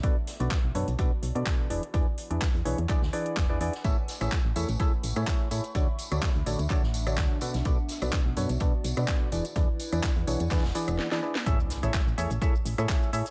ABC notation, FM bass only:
X:1
M:4/4
L:1/16
Q:"Swing 16ths" 1/4=126
K:A
V:1 name="FM bass" clef=bass
B,,, z2 B,,, z B,,, F,, B,,, z2 B,,, B,, z2 E,,, z | E,, z2 E,, z E,, B,,, E,, z D,, z2 E,,, E,, E,, z | A,,, z2 A,,, z A,,, E,, A,,, z2 A,,, A,, z2 A,, z | D,, z2 D,, z D,, A,,, D,, z A,,,3 D,, z2 B,,, |
B,,, z2 B,,, z B,,, F,, B,,, z2 B,,, B,, z2 E,,, z | E,, z2 E,, z E,, B,,, E,, E,, E,,, z E,,, z4 | A,,, z2 A,,, z A,,, E,, A,,, z2 A,,, A,, z2 A,, z |]